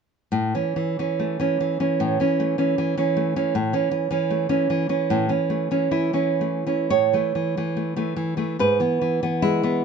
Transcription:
0.32 0.53 A2 medium
0.55 0.75 E3 soft
0.55 0.98 C#4 soft
0.76 0.98 E3 soft
0.99 1.38 E3 soft
0.99 1.39 C#4 soft
1.19 2.38 A3 soft
1.40 1.59 E3 soft
1.40 1.79 C#4 soft
1.60 1.79 E3 soft
1.80 2.19 E3 soft
1.80 2.20 C#4 soft
2.00 2.18 A2 medium
2.20 2.57 E3 soft
2.20 2.57 C#4 medium
2.40 3.15 A3 soft
2.58 2.77 E3 soft
2.58 2.97 C#4 soft
2.78 2.96 E3 medium
2.98 3.35 E3 medium
2.98 3.35 C#4 medium
3.17 3.54 A3 soft
3.36 3.53 E3 soft
3.36 3.53 C#4 medium
3.55 3.73 A2 medium
3.73 3.90 E3 soft
3.73 4.10 C#4 medium
3.91 4.09 E3 soft
4.11 4.48 E3 soft
4.11 4.48 C#4 medium
4.30 5.49 A3 soft
4.49 4.69 E3 soft
4.49 4.88 C#4 medium
4.70 4.88 E3 medium
4.89 5.28 E3 medium
4.89 5.28 C#4 soft
5.10 5.29 A2 medium
5.29 5.70 E3 soft
5.29 5.70 C#4 medium
5.50 6.40 A3 soft
5.71 5.90 E3 soft
5.71 6.13 C#4 soft
5.91 6.12 E3 soft
5.91 6.87 E4 medium
6.13 6.65 E3 soft
6.13 6.66 C#4 soft
6.41 6.91 A3 soft
6.67 6.89 E3 soft
6.67 6.89 C#4 soft
6.90 7.13 A2 soft
6.90 8.54 C#5 medium
7.13 7.34 E3 soft
7.13 7.56 A3 soft
7.35 7.56 E3 soft
7.57 7.95 E3 soft
7.57 7.75 A3 soft
7.77 7.96 A3 soft
7.96 8.15 E3 soft
7.96 8.36 A3 soft
8.16 8.36 E3 soft
8.37 8.56 E3 soft
8.37 8.56 A3 soft
8.59 8.79 G#2 medium
8.59 9.38 B4 medium
8.80 9.00 E3 soft
8.80 9.21 B3 soft
9.01 9.22 E3 soft
9.23 9.62 E3 soft
9.23 9.63 B3 medium
9.42 9.85 G#3 soft
9.42 9.85 E4 medium
9.63 9.83 E3 soft
9.63 9.85 B3 medium

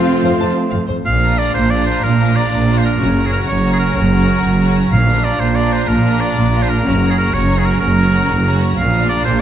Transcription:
0.00 0.53 F3 medium
0.00 0.85 F3 medium
0.00 0.85 A3 medium
0.00 0.81 C4 medium
0.00 0.86 C4 medium
0.00 0.53 F4 medium
0.00 0.54 F4 medium
0.00 0.86 F4 medium
0.00 0.85 C5 medium
0.23 0.30 F2 soft
0.23 0.31 C5 soft
0.40 0.47 F2 medium
0.40 0.55 A5 medium
0.71 0.79 F2 soft
0.71 0.78 F5 soft
0.88 0.95 F2 soft
0.88 0.95 C5 soft
1.05 1.49 A#1 soft
1.05 1.49 A#2 medium
1.05 1.40 F5 medium
1.05 triangle soft
1.20 1.70 D4 soft
1.20 1.68 F4 soft
1.20 1.69 A#5 soft
1.38 1.53 D5 medium
1.54 1.97 A#1 medium
1.54 1.97 A#2 soft
1.54 1.72 C5 medium
1.69 2.19 D4 soft
1.69 2.17 F4 soft
1.69 1.85 D5 medium
1.69 2.18 A#5 soft
1.86 2.05 C5 medium
2.03 2.46 A#1 medium
2.03 2.46 A#2 medium
2.03 2.37 A#4 medium
2.18 2.67 D4 soft
2.18 2.66 F4 soft
2.18 2.66 A#5 soft
2.36 2.80 D5 medium
2.52 2.94 A#1 medium
2.52 2.94 A#2 medium
2.67 3.00 D4 soft
2.67 2.99 F4 soft
2.67 2.99 A#5 soft
2.78 2.85 C5 medium
2.85 3.27 A#4 medium
2.99 3.43 F#1 soft
2.99 3.42 F#2 medium
2.99 3.15 C#4 soft
2.99 3.14 F#4 soft
2.99 3.15 A#5 soft
3.15 3.63 C#4 soft
3.15 3.62 F#4 soft
3.15 3.62 A#5 soft
3.26 3.32 G#4 soft
3.32 3.39 A#4 medium
3.47 3.91 F#1 soft
3.47 3.91 F#2 soft
3.47 3.71 C#5 medium
3.63 4.11 C#4 soft
3.63 4.09 F#4 soft
3.63 4.10 A#5 soft
3.73 3.76 G#4 medium
3.79 3.95 A#4 medium
3.96 4.39 F#1 medium
3.96 4.38 F#2 medium
3.96 4.74 A#4 medium
4.10 4.59 C#4 soft
4.10 4.58 F#4 soft
4.10 4.59 A#5 soft
4.43 4.86 F#1 medium
4.43 4.86 F#2 medium
4.59 4.92 C#4 soft
4.59 4.91 F#4 soft
4.59 4.91 A#5 soft
4.91 5.34 A#1 soft
4.91 5.34 A#2 medium
4.91 5.37 A#2 medium
4.91 5.25 F5 medium
5.07 5.55 D4 soft
5.07 5.54 F4 soft
5.07 5.55 A#5 soft
5.24 5.42 D5 medium
5.39 5.82 A#1 medium
5.39 5.82 A#2 soft
5.39 5.57 C5 medium
5.56 6.03 D4 soft
5.56 6.03 F4 soft
5.56 5.74 D5 medium
5.56 6.02 A#5 soft
5.73 5.89 C5 medium
5.88 6.30 A#1 soft
5.88 6.31 A#2 medium
5.88 6.22 A#4 medium
6.03 6.51 D4 soft
6.03 6.51 F4 soft
6.03 6.51 A#5 soft
6.20 6.64 D5 medium
6.37 6.79 A#1 medium
6.37 6.78 A#2 medium
6.52 6.83 D4 soft
6.52 6.83 F4 soft
6.52 6.83 A#5 soft
6.62 6.71 C5 medium
6.69 7.12 A#4 medium
6.84 7.27 F#1 medium
6.84 7.27 F#2 medium
6.84 7.00 C#4 soft
6.84 7.00 F#4 soft
6.84 6.99 A#5 soft
7.00 7.47 C#4 soft
7.00 7.46 F#4 soft
7.00 7.47 A#5 soft
7.10 7.17 G#4 medium
7.18 7.35 A#4 medium
7.33 7.75 F#1 medium
7.33 7.75 F#2 soft
7.33 7.60 C#5 medium
7.47 7.96 C#4 soft
7.47 7.94 F#4 soft
7.47 7.95 A#5 soft
7.59 7.66 G#4 medium
7.65 7.80 A#4 medium
7.80 8.23 F#1 medium
7.80 8.22 F#2 medium
7.80 8.58 A#4 medium
7.96 8.43 C#4 soft
7.96 8.43 F#4 medium
7.96 8.43 A#5 soft
8.28 8.71 F#1 medium
8.28 8.70 F#2 medium
8.44 8.75 C#4 soft
8.44 8.76 F#4 soft
8.44 8.75 A#5 soft
8.76 9.19 A#1 medium
8.76 9.18 A#2 medium
8.76 9.06 F5 medium
8.92 9.39 D4 soft
8.92 9.39 F4 soft
8.92 9.38 A#5 soft
9.09 9.24 D5 medium
9.24 9.41 A#1 medium
9.24 9.41 A#2 medium
9.24 9.41 C5 medium

